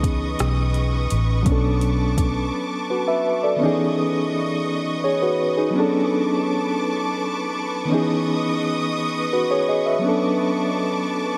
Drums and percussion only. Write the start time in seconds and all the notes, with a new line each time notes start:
0.03 kick, closed hi-hat
0.39 cross-stick, closed hi-hat
0.74 closed hi-hat
1.10 closed hi-hat
1.46 kick, closed hi-hat
1.81 closed hi-hat
2.18 kick, closed hi-hat